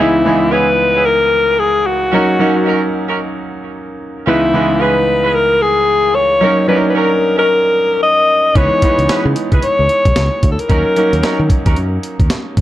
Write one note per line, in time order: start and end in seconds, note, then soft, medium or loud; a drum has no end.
0.00 0.19 C#2 medium
0.00 0.19 E3 medium
0.00 0.20 G#3 medium
0.00 0.14 B3 medium
0.00 0.20 B3 medium
0.00 0.14 C#4 medium
0.00 0.20 D#4 medium
0.00 0.14 E4 medium
0.00 0.54 E4 loud
0.00 0.14 G#4 loud
0.25 1.03 C#2 medium
0.25 1.03 E3 medium
0.25 1.03 G#3 medium
0.25 0.41 B3 medium
0.25 1.03 B3 medium
0.25 0.41 C#4 medium
0.25 1.04 D#4 medium
0.25 0.41 E4 medium
0.25 0.41 G#4 medium
0.52 0.67 B3 medium
0.52 0.67 C#4 medium
0.52 0.67 E4 medium
0.52 0.68 G#4 medium
0.52 1.07 B4 loud
0.95 1.05 B3 medium
0.95 1.05 C#4 medium
0.95 1.05 E4 medium
0.95 1.05 G#4 medium
1.06 1.61 A#4 loud
1.60 1.88 G#4 medium
1.86 2.93 F#4 medium
2.12 2.33 F#3 medium
2.12 2.34 A#3 medium
2.12 2.28 C#4 medium
2.12 2.34 C#4 medium
2.12 2.28 D#4 medium
2.12 2.34 D#4 medium
2.12 2.28 F#4 medium
2.12 2.28 A#4 loud
2.39 3.17 F#3 medium
2.39 3.17 A#3 medium
2.39 2.55 C#4 medium
2.39 3.18 C#4 medium
2.39 2.55 D#4 medium
2.39 3.18 D#4 medium
2.39 2.55 F#4 medium
2.39 2.55 A#4 medium
2.66 2.81 C#4 medium
2.66 2.81 D#4 medium
2.66 2.81 F#4 medium
2.66 2.82 A#4 medium
3.09 3.19 C#4 medium
3.09 3.19 D#4 medium
3.09 3.19 F#4 medium
3.09 3.19 A#4 medium
4.26 4.48 C#2 medium
4.26 4.48 E3 medium
4.26 4.48 G#3 medium
4.26 4.48 B3 medium
4.26 4.42 C#4 medium
4.26 4.48 D#4 medium
4.26 4.42 E4 medium
4.26 4.83 E4 medium
4.26 4.42 G#4 medium
4.26 4.42 B4 loud
4.53 5.31 C#2 medium
4.53 5.32 E3 medium
4.53 5.32 G#3 medium
4.53 5.32 B3 medium
4.53 4.69 C#4 medium
4.53 5.32 D#4 medium
4.53 4.69 E4 medium
4.53 4.69 G#4 medium
4.53 4.69 B4 medium
4.80 4.96 C#4 medium
4.80 4.96 E4 medium
4.80 4.96 G#4 medium
4.80 4.96 B4 medium
4.80 5.36 B4 medium
5.23 5.33 C#4 medium
5.23 5.34 E4 medium
5.23 5.34 G#4 medium
5.23 5.34 B4 medium
5.35 5.64 A#4 loud
5.62 6.17 G#4 loud
6.15 6.68 C#5 loud
6.41 6.62 F#3 medium
6.41 6.62 A#3 medium
6.41 6.57 C#4 medium
6.41 6.62 C#4 medium
6.41 6.57 D#4 medium
6.41 6.63 D#4 medium
6.41 6.57 F#4 medium
6.41 6.57 A#4 medium
6.68 7.46 F#3 medium
6.68 7.46 A#3 medium
6.68 6.83 C#4 medium
6.68 7.46 C#4 medium
6.68 6.76 D4 medium
6.68 6.83 D#4 medium
6.68 6.84 F#4 medium
6.68 6.84 A#4 medium
6.68 6.78 B4 medium
6.76 7.50 D#4 medium
6.90 6.98 B4 medium
6.95 7.10 C#4 medium
6.95 7.10 D#4 medium
6.95 7.10 F#4 medium
6.95 7.10 A#4 medium
6.95 7.38 A#4 loud
7.38 7.48 C#4 medium
7.38 7.48 D#4 medium
7.38 7.48 F#4 medium
7.38 7.48 A#4 medium
7.38 7.98 A#4 loud
8.03 8.58 D#5 loud
8.55 8.68 C#2 loud
8.55 8.76 E3 medium
8.55 8.77 G#3 medium
8.55 8.77 B3 medium
8.55 8.71 C#4 medium
8.55 8.77 D#4 medium
8.55 8.71 E4 medium
8.55 8.71 G#4 medium
8.55 8.71 B4 loud
8.55 9.36 C#5 loud
8.55 kick loud
8.55 closed hi-hat medium
8.82 9.60 E3 medium
8.82 9.60 G#3 medium
8.82 9.61 B3 medium
8.82 8.98 C#4 medium
8.82 9.61 D#4 medium
8.82 8.98 E4 medium
8.82 8.98 G#4 medium
8.82 8.98 B4 medium
8.82 kick medium
8.82 closed hi-hat medium
8.98 9.06 C#2 medium
8.98 closed hi-hat soft
9.09 9.24 C#4 medium
9.09 9.24 E4 medium
9.09 9.25 G#4 medium
9.09 9.25 B4 medium
9.09 muted fingered electric bass stroke medium
9.09 snare loud
9.09 closed hi-hat medium
9.25 9.33 C#3 loud
9.36 closed hi-hat medium
9.52 9.60 C#2 medium
9.52 9.62 C#4 medium
9.52 9.62 E4 medium
9.52 9.62 G#4 medium
9.52 9.62 B4 medium
9.52 kick medium
9.52 closed hi-hat medium
9.62 10.47 C#5 loud
9.62 closed hi-hat medium
9.79 9.87 C#2 medium
9.89 closed hi-hat medium
10.05 10.14 B1 medium
10.05 kick medium
10.05 closed hi-hat soft
10.16 10.28 C#2 medium
10.16 snare loud
10.16 closed hi-hat medium
10.43 10.55 D2 medium
10.43 kick medium
10.43 closed hi-hat medium
10.51 10.61 A4 medium
10.59 11.67 A#4 medium
10.59 closed hi-hat medium
10.69 10.82 D#2 loud
10.69 10.90 F#3 medium
10.69 10.91 A#3 medium
10.69 10.85 C#4 medium
10.69 10.91 C#4 medium
10.69 10.85 D#4 medium
10.69 10.91 D#4 medium
10.69 10.85 F#4 medium
10.69 10.85 A#4 loud
10.69 kick loud
10.69 closed hi-hat medium
10.96 11.74 F#3 medium
10.96 11.75 A#3 medium
10.96 11.12 C#4 medium
10.96 11.75 C#4 medium
10.96 11.12 D#4 medium
10.96 11.75 D#4 medium
10.96 11.12 F#4 medium
10.96 11.12 A#4 medium
10.96 closed hi-hat medium
11.13 11.21 D#2 medium
11.13 closed hi-hat medium
11.23 11.38 C#4 medium
11.23 11.39 D#4 medium
11.23 11.39 F#4 medium
11.23 11.39 A#4 medium
11.23 muted fingered electric bass stroke soft
11.23 snare loud
11.23 closed hi-hat medium
11.39 11.47 D#3 loud
11.50 kick loud
11.50 closed hi-hat medium
11.66 11.74 D#2 medium
11.66 11.76 C#4 medium
11.66 11.76 D#4 medium
11.66 11.76 F#4 medium
11.66 11.76 A#4 medium
11.66 kick loud
11.66 closed hi-hat medium
11.76 11.97 F#2 medium
11.76 closed hi-hat medium
12.03 closed hi-hat medium
12.20 12.28 D#2 medium
12.20 kick loud
12.20 closed hi-hat medium
12.30 snare loud
12.30 closed hi-hat medium
12.57 12.61 D#2 medium
12.57 kick medium
12.57 closed hi-hat medium